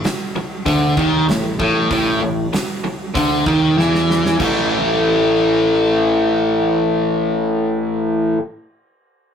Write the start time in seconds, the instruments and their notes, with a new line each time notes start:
0.04 muted picked electric bass stroke, muted overdriven electric guitar stroke, snare, open hi-hat
0.35 muted picked electric bass stroke, muted overdriven electric guitar stroke
0.66 picked electric bass D2, overdriven electric guitar D3, kick, open hi-hat
0.97 picked electric bass D#2, overdriven electric guitar D#3, kick
1.28 picked electric bass A1, overdriven electric guitar A2, snare, open hi-hat
1.59 picked electric bass A1, overdriven electric guitar A2, kick
1.91 picked electric bass A1, overdriven electric guitar A2, kick, open hi-hat
2.22 picked electric bass A1, overdriven electric guitar A2
2.53 muted overdriven electric guitar stroke, muted picked electric bass stroke, snare, open hi-hat
2.84 muted overdriven electric guitar stroke, muted picked electric bass stroke
3.15 picked electric bass D2, overdriven electric guitar D3, kick, open hi-hat
3.46 picked electric bass D#2, overdriven electric guitar D#3, kick
3.78 picked electric bass E2, overdriven electric guitar E3, snare
3.95 snare
4.10 snare
4.26 snare
4.39 picked electric bass A1, overdriven electric guitar A2 E3 A3, kick, crash